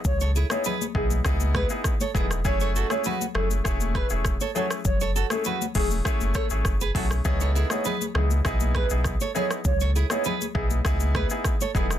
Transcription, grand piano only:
X:1
M:4/4
L:1/16
Q:1/4=100
K:C#m
V:1 name="Grand piano"
z3 [B,DEG] z2 [B,DEG]2 [B,DEG]3 [B,DEG] z2 [B,DEG]2 | [A,CEG]3 [A,CEG] z2 [A,CEG]2 [A,CEG]3 [A,CEG] z2 [A,CEG]2 | z3 [A,CEG] z2 [A,CEG]2 [A,CEG]3 [A,CEG] z2 [A,CEG]2 | [B,DEG]3 [B,DEG] z2 [B,DEG]2 [B,DEG]3 [B,DEG] z2 [B,DEG]2 |
z3 [B,DEG] z2 [B,DEG]2 [B,DEG]3 [B,DEG] z2 [B,DEG]2 |]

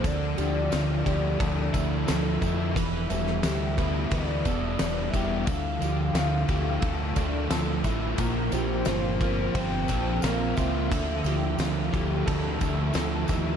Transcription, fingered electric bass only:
X:1
M:4/4
L:1/8
Q:1/4=88
K:Dm
V:1 name="Fingered electric bass" clef=bass
D,, D,, D,, D,, D,, D,, D,, F,, | E,,, E,,, D,,2 D,, E,,, E,,, E,,, | D,, D,, D,, D,, D,, D,, D,, A,,, | B,,, B,,, G,,,2 G,,, B,,, B,,, ^C,, |
D,, D,, D,, D,, D,, D,, D,, _E,, |]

